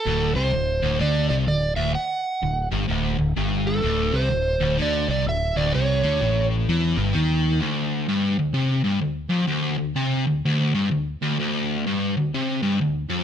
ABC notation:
X:1
M:4/4
L:1/8
Q:"Swing" 1/4=127
K:Dmix
V:1 name="Electric slide guitar"
A c3 d d d e | f3 z4 A- | A c3 d d e d | ^c3 z4 z |
z8 | z8 | z8 |]
V:2 name="Overdriven electric guitar" clef=bass
D,, C, D,, D,, D, C, D,, D,, | z2 D,, G,, D,, D,, G,,2 | D,, C, D,, D,, D, C, D,, D,, | C, D, A,,2 E, G,, _E,2 |
D,,2 G,, D,, C, G,, D,, =F,, | D,, D,, C, D,, D,, G,, D,, D,, | D,,2 G,, D,, C, G,, D,, =F,, |]
V:3 name="Fingered electric bass" clef=bass
D,,, C,, D,,, D,,, D,, C,, D,,, D,,, | z2 D,,, G,,, D,,, D,,, G,,,2 | D,,, C,, D,,, D,,, D,, C,, D,,, D,,, | C,, D,, A,,,2 E,, G,,, _E,,2 |
z8 | z8 | z8 |]